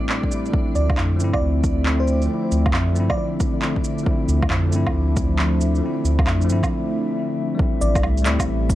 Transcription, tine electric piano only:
Already playing: G3 A3 C4 E4
0.31 G3 A3 C4
0.35 E4
0.50 F3 A3
0.56 C4 E4
1.16 F3 A3
1.22 C4 E4
2.26 F3 A3
2.31 C4 E4
2.92 F3 A3
2.98 C4 E4
4.03 F3 A3
4.08 C4 E4
4.68 F3 A3
4.74 C4 E4
5.78 F3 A3
5.83 C4 E4
6.44 F3 A3
6.50 C4 E4
7.55 G3 A3
7.60 C4 E4
8.22 G3 A3
8.28 C4 E4

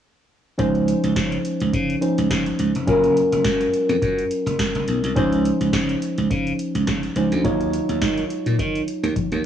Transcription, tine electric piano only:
0.58 F3 C#4 D#4 C5
2.01 F3 C#4 D#4 C5
2.87 F#3 C#4 F4 A#4
5.15 F3 C#4 D#4 C5
7.16 F3 C#4 D#4 C5
7.44 F#3 D#4 F4 C#5

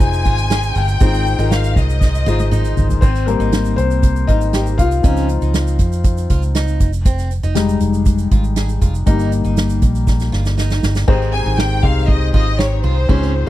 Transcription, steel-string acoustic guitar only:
0.25 F4
0.50 G#4
0.76 F4
1.00 C4
1.39 D#4
2.26 F4
2.51 D#4
3.02 C4
3.40 D#4
4.28 F4
4.54 G4
4.79 F4
5.04 C#4
5.42 D#4
6.30 F4
6.55 D#4
7.06 C4
7.43 D#4
8.31 F4
8.56 G#4
8.81 F4
9.07 D#4
9.44 D#4
10.32 F4
10.57 D#4
11.08 C4
11.46 D#4
12.34 F4
12.59 G4
12.84 F4
13.09 C#4

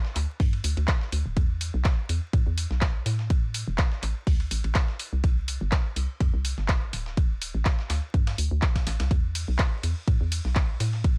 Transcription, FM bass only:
0.16 D2
0.40 G2
0.64 D2
0.77 D2
1.13 D2
1.26 D1
1.37 E2
1.74 B1
2.09 E2
2.33 A2
2.47 E2
2.71 B1
3.06 A2
3.68 E1
4.03 A1
4.27 D2
4.51 A1
4.64 A1
5.13 C2
5.24 C2
5.61 G1
5.96 C2
6.21 F2
6.34 C2
6.58 G1
6.93 D1
7.55 A1
7.90 D2
8.14 G2
8.38 D2
8.51 D2
8.87 A1
9.00 C2
9.11 E2
9.48 B1
9.84 E2
10.08 A2
10.21 E2
10.45 B1
10.80 A2

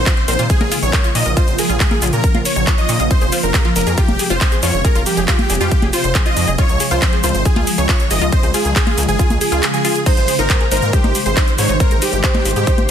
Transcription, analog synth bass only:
0.28 A#1
0.39 A#2
0.61 A#1
0.82 A#1
1.15 A#2
1.26 A#1
1.48 A#1
1.69 A#1
2.02 A#1
2.13 A#2
2.35 A#1
2.56 A#1
2.89 A#2
3.00 A#1
3.22 F1
3.43 F1
3.76 F1
3.87 F2
4.08 F1
4.30 F1
4.63 F2
4.74 F1
4.95 F1
5.17 F1
5.50 F1
5.61 F2
5.82 F1
6.04 F1
6.37 F2
6.48 F1
6.69 C#2
6.91 C#2
7.24 C#2
7.35 G#1
7.56 C#2
7.78 C#2
8.11 G#1
8.22 C#2
8.43 C#2
8.65 C#2
8.98 C#2
9.08 G#1
9.30 C#2
9.52 C#2
10.17 G#1
10.39 G#1
10.72 G#1
10.82 G#2
11.04 G#1
11.26 G#1
11.58 G#2
11.69 G#1
11.91 G#1
12.13 G#1
12.45 G#1
12.56 G#2
12.78 G#1

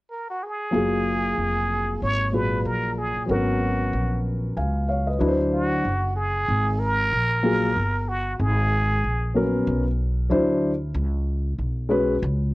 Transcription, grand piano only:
0.71 F#3 A#3 F4
0.76 G#4
2.32 A#2 F#3 F4 G#4
3.26 F#3 B3 C#4
3.31 A#4
4.57 F5 G#5
4.89 C#5 F5
5.07 B4 D#5
5.19 F#3 D4 E4 B4
5.28 C5
7.43 F#3 A#3 F4 G#4
9.34 F#3 A#3 C#4 A#4
9.41 B3
10.30 F#3 D4 E4 C5
11.89 G#3 C#4 F#4 B4

